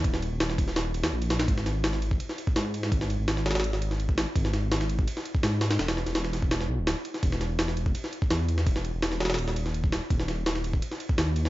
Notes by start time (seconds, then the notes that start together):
0.04 D#1, kick, ride
0.14 snare
0.22 ride
0.32 D#1
0.40 snare, ride
0.50 snare
0.58 kick, ride
0.68 snare
0.76 snare, ride
0.94 ride
1.04 D#2, snare, ride
1.12 A#1
1.22 ride
1.30 snare, ride
1.40 snare, ride
1.48 G#1, kick, ride
1.58 snare
1.66 snare, ride
1.84 snare, ride
1.93 snare
2.02 ride
2.11 kick
2.20 ride
2.29 snare
2.38 ride
2.47 kick
2.56 G#2, snare, ride
2.74 ride
2.83 snare
2.92 G#1, kick, ride
3.01 snare
3.10 ride
3.19 G#1
3.28 snare, ride
3.37 snare
3.46 snare, ride
3.51 snare, ride
3.55 snare, ride
3.60 snare, ride
3.64 ride
3.73 snare
3.82 ride
3.91 snare
4.00 ride
4.09 kick
4.18 snare, ride
4.35 G#1, kick, ride
4.45 snare
4.53 snare, ride
4.72 snare, ride
4.81 snare
4.89 ride
4.99 kick
5.08 ride
5.17 snare
5.25 ride
5.35 kick
5.43 G#2, snare, ride
5.61 snare, ride
5.71 snare, ride
5.79 E1, snare, ride
5.88 snare, ride
5.97 snare
6.06 E1, snare, ride
6.15 snare, ride
6.24 snare
6.33 snare, ride
6.42 kick
6.51 snare, ride
6.61 snare
6.69 B1
6.78 D1
6.87 snare, ride
7.05 ride
7.14 snare
7.23 E1, kick, ride
7.32 snare
7.41 snare, ride
7.59 snare, ride
7.68 snare
7.77 ride
7.86 kick
7.95 ride
8.04 snare
8.13 ride
8.22 kick
8.30 E2, snare, ride
8.49 ride
8.58 snare
8.67 E1, kick, ride
8.76 snare
8.85 ride
8.94 E1
9.02 snare, ride
9.12 snare
9.20 snare, ride
9.25 snare, ride
9.30 snare, ride
9.34 snare, ride
9.38 D#1, ride
9.48 snare
9.56 ride
9.66 snare
9.74 ride
9.84 kick
9.92 snare, ride
10.10 D#1, kick, ride
10.20 snare
10.28 snare, ride
10.46 snare, ride
10.56 snare
10.64 ride
10.74 kick
10.82 ride
10.91 snare
11.00 ride
11.09 kick
11.18 D#2, snare, ride
11.36 ride
11.45 snare